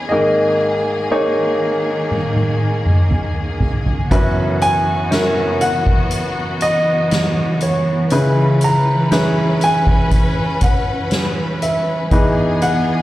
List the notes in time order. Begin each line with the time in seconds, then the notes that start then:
Already playing: G#4
0.09 G#1 G#2 D#3 A#3 D#4 G#4 A#4 D#5
1.11 A#3 D#4 G#4 C#5
2.11 high tom
2.36 high tom
2.86 mid tom
3.11 mid tom
3.60 floor tom
3.86 floor tom
4.11 F#1 F#2 E3 B3 C#4 E4 F#4 B4, kick, closed hi-hat
4.61 G#5, closed hi-hat
5.11 C#4 E4 F#4 A#4, snare, closed hi-hat
5.61 F#5, closed hi-hat
5.87 kick
6.11 closed hi-hat
6.61 D#5, closed hi-hat
7.11 snare, closed hi-hat
7.61 C#5, closed hi-hat
8.10 C#2 C#3 C#4 E4 G#4 B4, closed hi-hat
8.61 A#5, closed hi-hat
9.12 C#4 E4 G#4 B4, snare, closed hi-hat
9.61 G#5, closed hi-hat
9.87 kick
10.11 kick, closed hi-hat
10.61 F#5, kick, closed hi-hat
11.11 snare, closed hi-hat
11.62 E5, closed hi-hat
12.11 E2 E3 B3 D#4 E4 G#4 B4, kick, closed hi-hat
12.62 F#5, closed hi-hat